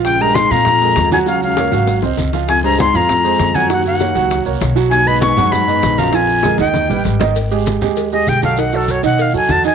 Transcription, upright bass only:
Already playing: A#1
0.51 A#2
0.96 D#2
1.72 G#1
2.03 C2
2.18 C#2
2.94 F2
3.39 F#2
4.15 C#2
4.45 C2
4.61 B1
5.37 F#2
5.83 A#1
6.59 D#2
6.90 A1
7.05 G#1
7.81 D#2
8.27 B1
9.03 B2
9.33 F2
9.49 E2

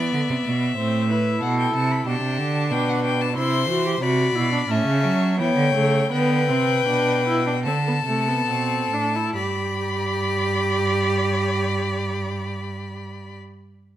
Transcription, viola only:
Already playing: B3
0.78 C4
1.10 E4
2.07 D4
3.36 E4
3.69 F#4
3.86 G4
4.02 F#4
4.35 E4
4.53 D4
4.70 C#4
5.40 B3
5.76 A3
6.12 B3
6.49 C4
6.87 D4
7.27 E4
7.47 D4
7.66 C4
7.88 B3
8.08 A3
8.28 B3
8.50 C4
8.93 D4
9.16 E4
9.38 G4

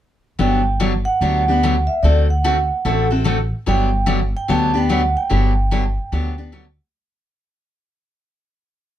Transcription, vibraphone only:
0.40 G5
1.05 F#5
1.87 E5
2.03 D5
2.30 F#5
3.69 G5
4.37 G5
4.50 A5
4.77 G5
4.91 F#5
5.17 G5

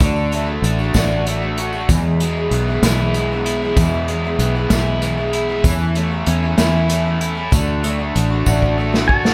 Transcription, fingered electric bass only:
0.00 D2
0.62 A1
0.95 A1
1.89 E2
2.51 B1
2.82 B1
3.77 E2
4.39 B1
4.71 B1
5.64 E2
6.27 E2
6.58 E2
7.52 D2
8.16 A1
8.47 A1

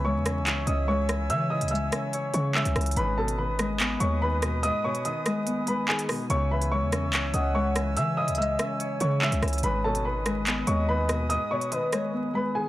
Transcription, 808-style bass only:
Already playing: C#2
0.15 E2
0.41 C#2
0.67 C#2
1.30 E3
1.61 C#2
2.34 C#3
2.65 C#2
2.76 C#2
2.97 G#1
4.01 D#2
6.30 C#2
6.82 E2
7.08 C#2
7.34 C#2
7.97 E3
8.28 C#2
9.01 C#3
9.32 C#2
9.42 C#2
9.63 G#1
10.68 D#2

